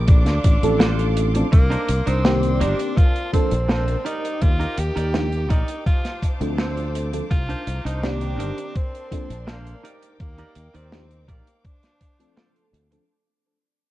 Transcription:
Already playing: A#1 D6
0.07 D4 A4 F5 C6, muted clean electric guitar stroke, kick, closed hi-hat
0.26 D2, snare, closed hi-hat
0.44 A1, kick, closed hi-hat
0.62 A1 F3 A3 C4 D4 A4, closed hi-hat
0.79 D4 F4 A4 C5, snare, closed hi-hat
0.99 closed hi-hat
1.17 closed hi-hat
1.34 F3 A3 C4 D4 A4, muted clean electric guitar stroke, closed hi-hat
1.52 C2 A#3 A#4 C6, muted clean electric guitar stroke, kick, closed hi-hat
1.70 D4 D#4 A#4 C5, closed hi-hat
1.89 C2, closed hi-hat
2.06 C2 C4 D4 D#4 A#4 C5, closed hi-hat
2.24 D#3 A#3 C4 G4 D5, snare, closed hi-hat
2.43 closed hi-hat
2.61 G1 D4 D#4 A#4 C5, closed hi-hat
2.79 closed hi-hat
2.97 F4 D5 A5, muted clean electric guitar stroke, kick, closed hi-hat
3.16 closed hi-hat
3.33 F3 A#3 C4 D4 A4, kick, closed hi-hat
3.51 A#1, closed hi-hat
3.69 D4 A4 A#4 C5, snare, closed hi-hat
3.88 closed hi-hat
4.05 D#4 G4 A#4 D5 G5 D6, closed hi-hat
4.25 closed hi-hat
4.42 D#2 F4, kick, closed hi-hat
4.59 D#4 G4 A#4 D#5, closed hi-hat
4.77 D#2 G4, closed hi-hat
4.95 D#2 D#4 G4 A#4 D5, closed hi-hat
5.13 F3 A#3 D4 D#4 G4, snare, closed hi-hat
5.32 closed hi-hat
5.49 A#1 D#4 G4 A#4 D5, kick, closed hi-hat
5.68 closed hi-hat
5.86 F4 C5 F5 A5, muted clean electric guitar stroke, kick, closed hi-hat
6.05 snare, closed hi-hat
6.23 kick, closed hi-hat
6.40 D2 F3 A3 C4 D4 A4, closed hi-hat
6.58 C4 D4 F4 A4 C5, snare, closed hi-hat
6.77 closed hi-hat
6.95 closed hi-hat
7.12 F3 A3 C4 D4 A4, muted clean electric guitar stroke, closed hi-hat
7.31 C2 F4 C5 A#5, muted clean electric guitar stroke, kick, closed hi-hat
7.49 D4 D#4 A#4 C5, closed hi-hat
7.67 C2, closed hi-hat
7.85 C2 D4 D#4 A#4 C5, closed hi-hat
8.03 D#3 A#3 C4 D4 G4 D5, snare, closed hi-hat
8.21 closed hi-hat
8.38 G1 D4 D#4 A#4 C5, closed hi-hat
8.58 closed hi-hat
8.75 C4 A#4 D5 A5 C6, muted clean electric guitar stroke, kick, closed hi-hat
8.95 closed hi-hat
9.11 F3 A#3 C4 D4 A4, kick, closed hi-hat
9.30 A#1, closed hi-hat
9.47 A#3 D4 A4 A#4 C5, snare, closed hi-hat
9.67 closed hi-hat
9.83 D#4 G4 A#4 D5 G5 D6, closed hi-hat
10.03 closed hi-hat
10.20 D#2 A#3, kick, closed hi-hat
10.38 D#4 G4 A#4 D5, closed hi-hat
10.56 D#2, closed hi-hat
10.74 D#2 C4 D#4 G4 A#4 D5, closed hi-hat
10.92 F3 A#3 D4 D#4 G4, snare, closed hi-hat
11.11 closed hi-hat
11.28 A#1 A#3 D#4 G4 A#4 D5, kick, closed hi-hat
11.47 closed hi-hat
11.64 D4 C5 F5 A5, muted clean electric guitar stroke, kick, closed hi-hat
11.83 snare, closed hi-hat
12.01 kick, closed hi-hat
12.19 F3 A3 C4 D4 A4, closed hi-hat
12.36 F4 A4 C5 D5, snare, closed hi-hat
12.56 closed hi-hat
12.73 D2, closed hi-hat
12.91 F3 A3 C4 D4 A4, muted clean electric guitar stroke, closed hi-hat

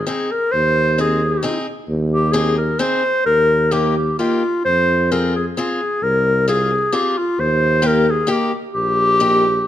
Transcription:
0.07 C4 D#4 G#4
0.31 A#4
0.52 D#2 C5
0.98 C4 D#4 G#4
1.43 C4 D#4 G#4
1.89 D#2
2.12 G4
2.32 C4 D#4 G#4
2.58 A#4
2.79 C4 D#4 G#4 C5
3.26 D#2 A#4
3.71 A#3 D#4 G4
3.97 G4
4.18 A#3 D#4 F4 G4
4.65 F2 C5
5.11 C4 F4 G#4 A#4
5.36 G#4
5.57 C4 F4 G#4
6.02 C2 A#4
6.48 C4 F4 G#4
6.92 C4 F4 G4 G#4
7.18 F4
7.39 D#2 C5
7.82 A#3 D#4 G4
7.87 A#4
8.10 G#4
8.27 A#3 D#4 G4
8.32 G4
8.74 A#1 G4
9.20 A#3 D#4 G4

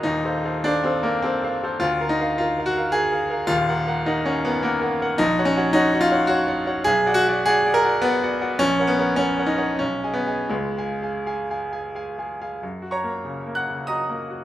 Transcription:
0.03 D#1 D#2 D#4
0.25 A4 C5 F5
0.45 A4 C5 F5
0.64 D4 A4 C5 F5
0.84 C4 A4 C5 F5
1.03 A#3 A4 C5 F5
1.22 C4 A4 C5 F5
1.44 A4 C5 F5
1.63 A4 C5 F5
1.80 D2 F4
2.01 A#4 F5
2.09 D#4
2.21 A#4 F5
2.38 F4 A#4 F5
2.58 A#4 F5
2.66 F#4
2.77 A#4 F5
2.92 G#4 A#4 F5
3.12 A#4 F5
3.30 A#4 F5
3.47 D#1 D#2 F4
3.68 A#4 F#5
3.87 A#4 F#5
4.06 D#4 A#4 F#5
4.25 C#4 A#4 F#5
4.45 B3 A#4 F#5
4.63 A#3 A#4 F#5
4.82 A#4 F#5
5.02 A#4 F#5
5.18 A#1 D#4
5.39 F#4 C#5 F#5
5.45 C#4
5.57 F#4 C#5 F#5
5.73 D#4 F#4 C#5 F#5
5.94 F#4 C#5 F#5
6.01 F4
6.11 F#4 C#5 F#5
6.27 F#4 C#5 F#5
6.48 F#4 C#5 F#5
6.66 F#4 C#5 F#5
6.84 B1 G#4
7.06 F#4 D5 F#5
7.14 F#4
7.28 F#4 D5 F#5
7.46 F#4 G#4 D5 F#5
7.65 F#4 D5 F#5
7.74 A#4
7.85 F#4 D5 F#5
8.02 B3 F#4 D5 F#5
8.23 F#4 D5 F#5
8.41 F#4 D5 F#5
8.59 A#1 C#4
8.80 A#4 C#5 F#5
8.87 B3
8.99 A#4 C#5 F#5
9.16 C#4 A#4 C#5 F#5
9.39 A#4 C#5 F#5
9.46 D#4
9.58 A#4 C#5 F#5
9.79 B1 C#4
10.03 G#4 D#5 G#5
10.14 B3
10.27 G#4 D#5 G#5
10.49 C#2 G#3
10.77 G#4 F5 G#5
11.02 G#4 F5 G#5
11.26 G#4 F5 G#5
11.50 G#4 F5 G#5
11.72 G#4 F5 G#5
11.95 G#4 F5 G#5
12.18 G#4 F5 G#5
12.41 G#4 F5 G#5
12.63 F#2
12.82 F#4
12.91 C#5 A#5 C#6
13.04 A#3
13.25 C#3
13.47 A#3
13.55 F#5 F#6
13.68 C#3
13.87 F#4 D#5 A#5 D#6
14.10 A#3
14.30 F#4

